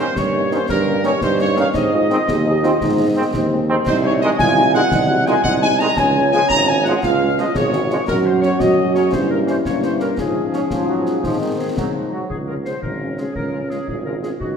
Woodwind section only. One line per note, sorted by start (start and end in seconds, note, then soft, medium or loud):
0.00 0.17 C5 medium
0.16 0.49 C#5 medium
0.52 0.70 C5 medium
0.70 1.02 A#4 medium
1.06 1.14 C#5 medium
1.23 1.31 C5 medium
1.39 1.56 C#5 medium
1.57 1.75 F5 medium
1.74 3.55 D#5 medium
3.86 4.02 C5 medium
4.03 4.21 C#5 medium
4.22 4.38 D#5 medium
4.38 4.71 G#5 medium
4.75 5.27 F#5 medium
5.26 5.44 G#5 medium
5.45 5.52 F#5 medium
5.63 5.71 G#5 medium
5.81 5.88 A#5 medium
5.98 6.30 G#5 medium
6.33 6.41 G#5 medium
6.50 6.67 A#5 medium
6.68 6.84 G#5 medium
6.86 7.02 F#5 medium
7.05 7.39 F5 medium
7.39 7.56 D#5 medium
7.57 8.09 C#5 medium
8.08 8.24 A#4 medium
8.25 8.43 C5 medium
8.41 8.50 C#5 medium
8.60 8.93 D#5 medium
8.94 9.03 C#5 medium
9.12 9.20 C5 medium
9.30 9.38 A#4 medium
9.48 9.56 C5 medium
9.66 9.82 C#5 medium
9.83 10.01 C5 medium
10.01 10.18 A#4 medium
10.18 11.55 G#4 medium
11.59 11.67 G#4 medium
11.77 12.10 D#4 medium
12.12 12.20 F#4 soft
12.29 12.37 G#4 medium
12.47 12.55 A#4 soft
12.65 12.81 C5 medium
12.83 13.15 A#4 soft
13.19 13.36 G#4 medium
13.35 13.68 A#4 medium
13.70 13.87 G#4 medium
13.88 13.96 G#4 medium
14.06 14.13 A#4 medium
14.23 14.31 G#4 soft
14.40 14.57 F#4 medium